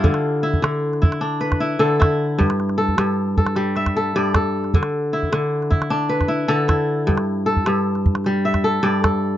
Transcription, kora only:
<<
  \new Staff \with { instrumentName = "Kora" } { \time 12/8 \key g \mixolydian \tempo 4. = 102 e'16 r8. e'4. e'4 b'8 e'8 a'8 e'4~ | e'8 r8 a'4. a'4 e''8 a'8 d''8 a'4~ | a'8 r8 e'4. e'4 b'8 e'8 a'8 e'4~ | e'8 r8 a'4. r4 e''8 a'8 d''8 a'4 | }
  \new Staff \with { instrumentName = "Kora" } { \clef bass \time 12/8 \key g \mixolydian d4 r8 d4 r8 d'4 r8 d4 r8 | g,4 r8 g,4 r8 g4 r8 g,4 r8 | d4 r8 d4 r8 d'4 r8 d4 r8 | g,4 r8 g,4 r8 g4 r8 g,4 r8 | }
>>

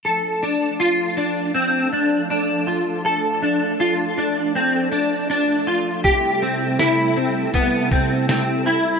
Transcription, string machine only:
\new Staff \with { instrumentName = "String machine" } { \time 4/4 \key d \minor \tempo 4 = 80 << { <f d' a'>1~ | <f d' a'>1 | <c g e' a'>1 | } \\ { a1~ | a1~ | a1 | } >> }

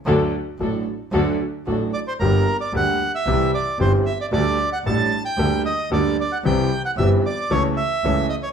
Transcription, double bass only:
\new Staff \with { instrumentName = "Double bass" } { \clef bass \time 4/4 \key g \minor \tempo 4 = 113 d,8 r8 a,,8 r8 d,8 r8 a,,8 r8 | g,,8 r8 d,8 r8 c,8 r8 g,,8 r8 | d,8 r8 a,,8 r8 d,8 r8 d,8 r8 | c,8 r8 g,,8 r8 cis,8 r8 cis,8 r8 | }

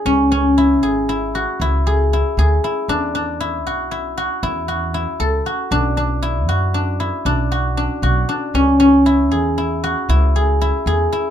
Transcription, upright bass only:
\new Staff \with { instrumentName = "Upright bass" } { \clef bass \time 11/8 \key cis \phrygian \tempo 4 = 117 cis,4. gis,,4. cis,4. d,8 r8 | e,4. b,,4. e,4. cis,8 r8 | b,,4. fis,4. b,,4. b,,8 r8 | cis,4. e,4. cis,4. e,8 r8 | }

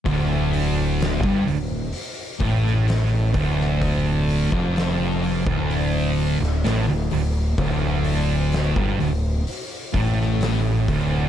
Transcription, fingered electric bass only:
\new Staff \with { instrumentName = "Fingered electric bass" } { \clef bass \time 4/4 \key d \minor \tempo 4 = 64 d,,4~ d,,16 g,,16 d,,8 r8 a,,4 d,,8~ | d,,8. f,,4 d,,4 d,,16 a,,16 d,,16 d,,8 | d,,4~ d,,16 g,,16 d,,8 r8 a,,4 d,,8 | }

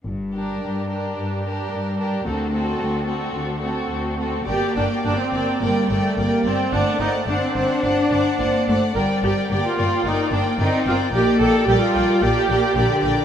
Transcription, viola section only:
\new Staff \with { instrumentName = "Viola section" } { \time 4/4 \key g \minor \tempo 4 = 109 r8 d'4 d'4 d'4 d'8 | c'8 c'4 c'4 c'4 c'8 | g'8 d'8 d'16 c'8. bes8 a8 bes8 c'8 | d'8 ees'8 d'16 c'8. d'4. r8 |
bes'8 g'8 g'16 f'8. ees'8 d'8 ees'8 f'8 | g'8 a'8 g'16 f'8. g'4. r8 | }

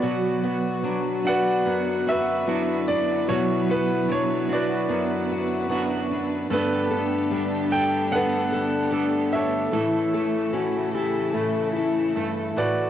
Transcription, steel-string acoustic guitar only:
\new Staff \with { instrumentName = "Steel-string acoustic guitar" } { \time 4/4 \key b \minor \tempo 4 = 74 << { b8 fis'4 d'4 fis'4 d'8 | b8 fis'4 d'4 fis'4 d'8 | a8 a'4 d'4 a'4 d'8 | a8 a'4 e'4 a'4. | } \\ { b,4 fis4 fis,4 fis4 | b,4 fis4 fis,4 fis4 | g,4 g4 d4 g4 | a,4 e4 a,4 g,8 a,8 | } >> }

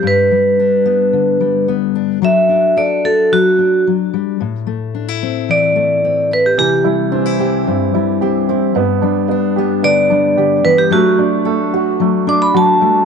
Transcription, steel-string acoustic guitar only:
\new Staff \with { instrumentName = "Steel-string acoustic guitar" } { \time 4/4 \key g \major \tempo 4 = 110 << { r4 d'8 b4. b8 d'8 | <d' fis' a'>4 a'8 fis'2~ fis'8 | r4 d'16 e'16 c'4. c'8 e'8 | r4 d'16 e'16 c'4. c'8 e'8 |
r4 d'8 b2~ b8 | d'8 r8 a'8 fis'2~ fis'8 | } \\ { g,8 g4. d8 g4. | fis8 d'4. fis8 d'8 fis8 g8 | a,8 a4. e8 a4. | c8 g4. g,8 g4. |
g,8 g4. d8 g8 d8 e8 | fis8 d'4. fis8 d'8 fis8 g8 | } >> }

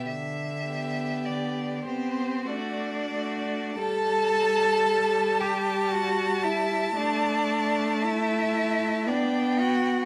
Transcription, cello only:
\new Staff \with { instrumentName = "Cello" } { \time 3/4 \key e \minor \tempo 4 = 57 d4 d8 c'8 d'4 | a'4. g'8 fis'8 e'8 | d'4 e'4 d'8 fis'8 | }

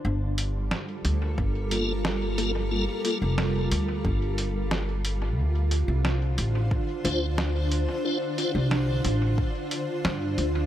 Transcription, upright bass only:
\new Staff \with { instrumentName = "Upright bass" } { \clef bass \time 4/4 \key g \minor \tempo 4 = 90 g,,4 r8 d,8 g,,2~ | g,,16 r8 f,,8. d,8 g,,2 | d,8. c,8. a,,8 r8 d,4~ d,16 r16 | r8. c,8. a,,8 r4 g,8 d,8 | }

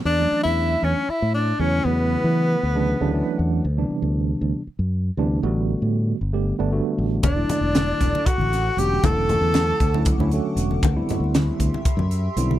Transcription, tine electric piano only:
<<
  \new Staff \with { instrumentName = "Tine electric piano" } { \time 7/8 \key e \minor \tempo 4 = 117 r2. r8 | r2 r8 d''8 fis''8 | r2. r8 | r2. r8 |
r2. r8 | r2. r8 | r2. r8 | }
  \new Staff \with { instrumentName = "Tine electric piano" } { \time 7/8 \key e \minor r16 <e fis a cis' d'>4. r4 r16 <cis e fis a e'>8 | <cis e fis a e'>4. r16 <cis e fis a d'>8 <cis e fis a d'>16 <e fis a cis' d'>4 | r16 <c e g b d'>4. r4 r16 <c e g b d'>8 | <d g a b fis'>4. r16 <d g a b g'>8 <d g a b d'>16 <d g a b fis'>4 |
r16 <d fis a d' e'>4. r4 r16 <d fis a cis' fis'>8 | <d fis a cis' e'>4. r16 <d fis a cis' e'>8 <d fis a cis' e'>16 <d fis a cis' fis'>4 | r16 <d g b c' e'>4. r4 r16 <d g b c' e'>8 | }
>>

